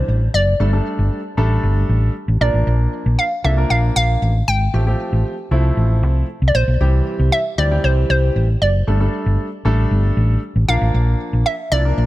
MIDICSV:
0, 0, Header, 1, 4, 480
1, 0, Start_track
1, 0, Key_signature, 0, "major"
1, 0, Tempo, 517241
1, 556, Time_signature, 4, 2, 24, 8
1, 11193, End_track
2, 0, Start_track
2, 0, Title_t, "Synth pluck"
2, 0, Program_c, 0, 84
2, 0, Note_on_c, 0, 72, 89
2, 317, Note_on_c, 0, 74, 87
2, 330, Note_off_c, 0, 72, 0
2, 1240, Note_off_c, 0, 74, 0
2, 2238, Note_on_c, 0, 74, 84
2, 2957, Note_on_c, 0, 77, 96
2, 2979, Note_off_c, 0, 74, 0
2, 3197, Note_on_c, 0, 76, 94
2, 3204, Note_off_c, 0, 77, 0
2, 3436, Note_on_c, 0, 77, 103
2, 3444, Note_off_c, 0, 76, 0
2, 3544, Note_off_c, 0, 77, 0
2, 3676, Note_on_c, 0, 77, 101
2, 4157, Note_on_c, 0, 79, 97
2, 4170, Note_off_c, 0, 77, 0
2, 5079, Note_off_c, 0, 79, 0
2, 6011, Note_on_c, 0, 74, 68
2, 6076, Note_off_c, 0, 74, 0
2, 6076, Note_on_c, 0, 72, 92
2, 6796, Note_on_c, 0, 76, 108
2, 6818, Note_off_c, 0, 72, 0
2, 7036, Note_on_c, 0, 74, 99
2, 7043, Note_off_c, 0, 76, 0
2, 7277, Note_on_c, 0, 72, 96
2, 7283, Note_off_c, 0, 74, 0
2, 7500, Note_off_c, 0, 72, 0
2, 7517, Note_on_c, 0, 72, 91
2, 7997, Note_on_c, 0, 74, 88
2, 8011, Note_off_c, 0, 72, 0
2, 8919, Note_off_c, 0, 74, 0
2, 9916, Note_on_c, 0, 77, 107
2, 10634, Note_on_c, 0, 76, 100
2, 10658, Note_off_c, 0, 77, 0
2, 10873, Note_on_c, 0, 74, 105
2, 10882, Note_off_c, 0, 76, 0
2, 11193, Note_off_c, 0, 74, 0
2, 11193, End_track
3, 0, Start_track
3, 0, Title_t, "Grand piano"
3, 0, Program_c, 1, 0
3, 0, Note_on_c, 1, 52, 73
3, 0, Note_on_c, 1, 55, 66
3, 0, Note_on_c, 1, 60, 67
3, 0, Note_on_c, 1, 62, 78
3, 159, Note_off_c, 1, 52, 0
3, 159, Note_off_c, 1, 55, 0
3, 160, Note_off_c, 1, 60, 0
3, 161, Note_off_c, 1, 62, 0
3, 554, Note_on_c, 1, 55, 71
3, 556, Note_on_c, 1, 57, 66
3, 557, Note_on_c, 1, 62, 65
3, 559, Note_on_c, 1, 69, 79
3, 640, Note_off_c, 1, 55, 0
3, 641, Note_off_c, 1, 57, 0
3, 642, Note_off_c, 1, 62, 0
3, 643, Note_off_c, 1, 69, 0
3, 674, Note_on_c, 1, 55, 69
3, 676, Note_on_c, 1, 57, 62
3, 677, Note_on_c, 1, 62, 63
3, 679, Note_on_c, 1, 69, 76
3, 1102, Note_off_c, 1, 55, 0
3, 1103, Note_off_c, 1, 57, 0
3, 1104, Note_off_c, 1, 62, 0
3, 1105, Note_off_c, 1, 69, 0
3, 1274, Note_on_c, 1, 55, 88
3, 1275, Note_on_c, 1, 57, 76
3, 1277, Note_on_c, 1, 62, 81
3, 1278, Note_on_c, 1, 69, 95
3, 1959, Note_off_c, 1, 55, 0
3, 1960, Note_off_c, 1, 57, 0
3, 1960, Note_off_c, 1, 62, 0
3, 1961, Note_off_c, 1, 69, 0
3, 2234, Note_on_c, 1, 53, 71
3, 2235, Note_on_c, 1, 58, 65
3, 2236, Note_on_c, 1, 62, 68
3, 2238, Note_on_c, 1, 70, 81
3, 3003, Note_off_c, 1, 53, 0
3, 3003, Note_off_c, 1, 58, 0
3, 3004, Note_off_c, 1, 62, 0
3, 3005, Note_off_c, 1, 70, 0
3, 3194, Note_on_c, 1, 53, 74
3, 3195, Note_on_c, 1, 58, 69
3, 3197, Note_on_c, 1, 62, 67
3, 3199, Note_on_c, 1, 69, 80
3, 3280, Note_off_c, 1, 53, 0
3, 3281, Note_off_c, 1, 58, 0
3, 3282, Note_off_c, 1, 62, 0
3, 3283, Note_off_c, 1, 69, 0
3, 3314, Note_on_c, 1, 53, 72
3, 3315, Note_on_c, 1, 58, 66
3, 3317, Note_on_c, 1, 62, 66
3, 3318, Note_on_c, 1, 70, 83
3, 3999, Note_off_c, 1, 53, 0
3, 4000, Note_off_c, 1, 58, 0
3, 4000, Note_off_c, 1, 62, 0
3, 4001, Note_off_c, 1, 70, 0
3, 4394, Note_on_c, 1, 53, 70
3, 4395, Note_on_c, 1, 57, 64
3, 4397, Note_on_c, 1, 60, 66
3, 4399, Note_on_c, 1, 67, 75
3, 4480, Note_off_c, 1, 53, 0
3, 4481, Note_off_c, 1, 57, 0
3, 4482, Note_off_c, 1, 60, 0
3, 4483, Note_off_c, 1, 67, 0
3, 4515, Note_on_c, 1, 53, 74
3, 4516, Note_on_c, 1, 57, 67
3, 4518, Note_on_c, 1, 60, 64
3, 4520, Note_on_c, 1, 67, 77
3, 4943, Note_off_c, 1, 53, 0
3, 4944, Note_off_c, 1, 57, 0
3, 4944, Note_off_c, 1, 60, 0
3, 4945, Note_off_c, 1, 67, 0
3, 5114, Note_on_c, 1, 53, 88
3, 5116, Note_on_c, 1, 57, 77
3, 5118, Note_on_c, 1, 60, 82
3, 5119, Note_on_c, 1, 64, 91
3, 5799, Note_off_c, 1, 53, 0
3, 5800, Note_off_c, 1, 57, 0
3, 5801, Note_off_c, 1, 60, 0
3, 5802, Note_off_c, 1, 64, 0
3, 6314, Note_on_c, 1, 52, 73
3, 6315, Note_on_c, 1, 55, 62
3, 6317, Note_on_c, 1, 60, 66
3, 6319, Note_on_c, 1, 67, 77
3, 6828, Note_off_c, 1, 52, 0
3, 6829, Note_off_c, 1, 55, 0
3, 6830, Note_off_c, 1, 60, 0
3, 6830, Note_off_c, 1, 67, 0
3, 7034, Note_on_c, 1, 52, 74
3, 7035, Note_on_c, 1, 55, 67
3, 7037, Note_on_c, 1, 60, 68
3, 7038, Note_on_c, 1, 67, 82
3, 7120, Note_off_c, 1, 52, 0
3, 7121, Note_off_c, 1, 55, 0
3, 7122, Note_off_c, 1, 60, 0
3, 7123, Note_off_c, 1, 67, 0
3, 7154, Note_on_c, 1, 52, 73
3, 7156, Note_on_c, 1, 55, 68
3, 7157, Note_on_c, 1, 60, 68
3, 7159, Note_on_c, 1, 67, 84
3, 7839, Note_off_c, 1, 52, 0
3, 7840, Note_off_c, 1, 55, 0
3, 7841, Note_off_c, 1, 60, 0
3, 7842, Note_off_c, 1, 67, 0
3, 8234, Note_on_c, 1, 55, 72
3, 8235, Note_on_c, 1, 57, 64
3, 8237, Note_on_c, 1, 62, 64
3, 8239, Note_on_c, 1, 69, 78
3, 8321, Note_off_c, 1, 55, 0
3, 8321, Note_off_c, 1, 57, 0
3, 8322, Note_off_c, 1, 62, 0
3, 8323, Note_off_c, 1, 69, 0
3, 8355, Note_on_c, 1, 55, 75
3, 8356, Note_on_c, 1, 57, 63
3, 8357, Note_on_c, 1, 62, 69
3, 8359, Note_on_c, 1, 69, 77
3, 8783, Note_off_c, 1, 55, 0
3, 8784, Note_off_c, 1, 57, 0
3, 8784, Note_off_c, 1, 62, 0
3, 8785, Note_off_c, 1, 69, 0
3, 8954, Note_on_c, 1, 55, 88
3, 8955, Note_on_c, 1, 57, 85
3, 8957, Note_on_c, 1, 62, 82
3, 8958, Note_on_c, 1, 69, 99
3, 9639, Note_off_c, 1, 55, 0
3, 9640, Note_off_c, 1, 57, 0
3, 9641, Note_off_c, 1, 62, 0
3, 9641, Note_off_c, 1, 69, 0
3, 9913, Note_on_c, 1, 53, 75
3, 9915, Note_on_c, 1, 58, 67
3, 9916, Note_on_c, 1, 62, 66
3, 9918, Note_on_c, 1, 70, 84
3, 10683, Note_off_c, 1, 53, 0
3, 10683, Note_off_c, 1, 58, 0
3, 10684, Note_off_c, 1, 62, 0
3, 10685, Note_off_c, 1, 70, 0
3, 10873, Note_on_c, 1, 53, 75
3, 10874, Note_on_c, 1, 58, 68
3, 10876, Note_on_c, 1, 62, 66
3, 10877, Note_on_c, 1, 64, 82
3, 10960, Note_off_c, 1, 53, 0
3, 10961, Note_off_c, 1, 58, 0
3, 10961, Note_off_c, 1, 62, 0
3, 10962, Note_off_c, 1, 64, 0
3, 10994, Note_on_c, 1, 53, 72
3, 10996, Note_on_c, 1, 58, 67
3, 10997, Note_on_c, 1, 62, 67
3, 10999, Note_on_c, 1, 70, 82
3, 11193, Note_off_c, 1, 53, 0
3, 11193, Note_off_c, 1, 58, 0
3, 11193, Note_off_c, 1, 62, 0
3, 11193, Note_off_c, 1, 70, 0
3, 11193, End_track
4, 0, Start_track
4, 0, Title_t, "Fingered electric bass"
4, 0, Program_c, 2, 33
4, 77, Note_on_c, 2, 33, 79
4, 251, Note_off_c, 2, 33, 0
4, 316, Note_on_c, 2, 30, 83
4, 490, Note_off_c, 2, 30, 0
4, 557, Note_on_c, 2, 31, 98
4, 731, Note_off_c, 2, 31, 0
4, 916, Note_on_c, 2, 31, 89
4, 1003, Note_off_c, 2, 31, 0
4, 1276, Note_on_c, 2, 33, 86
4, 1450, Note_off_c, 2, 33, 0
4, 1516, Note_on_c, 2, 31, 94
4, 1690, Note_off_c, 2, 31, 0
4, 1756, Note_on_c, 2, 33, 87
4, 1930, Note_off_c, 2, 33, 0
4, 2116, Note_on_c, 2, 33, 86
4, 2203, Note_off_c, 2, 33, 0
4, 2236, Note_on_c, 2, 34, 93
4, 2323, Note_off_c, 2, 34, 0
4, 2356, Note_on_c, 2, 33, 81
4, 2443, Note_off_c, 2, 33, 0
4, 2477, Note_on_c, 2, 34, 95
4, 2651, Note_off_c, 2, 34, 0
4, 2838, Note_on_c, 2, 34, 87
4, 2925, Note_off_c, 2, 34, 0
4, 3198, Note_on_c, 2, 36, 86
4, 3371, Note_off_c, 2, 36, 0
4, 3437, Note_on_c, 2, 34, 93
4, 3611, Note_off_c, 2, 34, 0
4, 3677, Note_on_c, 2, 34, 91
4, 3851, Note_off_c, 2, 34, 0
4, 3917, Note_on_c, 2, 33, 87
4, 4091, Note_off_c, 2, 33, 0
4, 4157, Note_on_c, 2, 32, 91
4, 4331, Note_off_c, 2, 32, 0
4, 4396, Note_on_c, 2, 33, 101
4, 4570, Note_off_c, 2, 33, 0
4, 4756, Note_on_c, 2, 33, 87
4, 4843, Note_off_c, 2, 33, 0
4, 5115, Note_on_c, 2, 36, 85
4, 5290, Note_off_c, 2, 36, 0
4, 5355, Note_on_c, 2, 33, 92
4, 5596, Note_off_c, 2, 33, 0
4, 5596, Note_on_c, 2, 36, 83
4, 5770, Note_off_c, 2, 36, 0
4, 5956, Note_on_c, 2, 36, 84
4, 6043, Note_off_c, 2, 36, 0
4, 6076, Note_on_c, 2, 34, 91
4, 6163, Note_off_c, 2, 34, 0
4, 6196, Note_on_c, 2, 35, 92
4, 6283, Note_off_c, 2, 35, 0
4, 6316, Note_on_c, 2, 36, 96
4, 6490, Note_off_c, 2, 36, 0
4, 6677, Note_on_c, 2, 36, 91
4, 6763, Note_off_c, 2, 36, 0
4, 7036, Note_on_c, 2, 38, 86
4, 7210, Note_off_c, 2, 38, 0
4, 7276, Note_on_c, 2, 36, 91
4, 7450, Note_off_c, 2, 36, 0
4, 7516, Note_on_c, 2, 36, 94
4, 7690, Note_off_c, 2, 36, 0
4, 7756, Note_on_c, 2, 33, 85
4, 7930, Note_off_c, 2, 33, 0
4, 7996, Note_on_c, 2, 30, 89
4, 8170, Note_off_c, 2, 30, 0
4, 8237, Note_on_c, 2, 31, 94
4, 8411, Note_off_c, 2, 31, 0
4, 8596, Note_on_c, 2, 31, 90
4, 8683, Note_off_c, 2, 31, 0
4, 8957, Note_on_c, 2, 33, 88
4, 9131, Note_off_c, 2, 33, 0
4, 9197, Note_on_c, 2, 31, 99
4, 9371, Note_off_c, 2, 31, 0
4, 9437, Note_on_c, 2, 33, 84
4, 9611, Note_off_c, 2, 33, 0
4, 9796, Note_on_c, 2, 33, 88
4, 9883, Note_off_c, 2, 33, 0
4, 9917, Note_on_c, 2, 34, 94
4, 10004, Note_off_c, 2, 34, 0
4, 10036, Note_on_c, 2, 33, 88
4, 10123, Note_off_c, 2, 33, 0
4, 10156, Note_on_c, 2, 34, 99
4, 10330, Note_off_c, 2, 34, 0
4, 10515, Note_on_c, 2, 34, 89
4, 10603, Note_off_c, 2, 34, 0
4, 10875, Note_on_c, 2, 36, 89
4, 11049, Note_off_c, 2, 36, 0
4, 11115, Note_on_c, 2, 34, 95
4, 11193, Note_off_c, 2, 34, 0
4, 11193, End_track
0, 0, End_of_file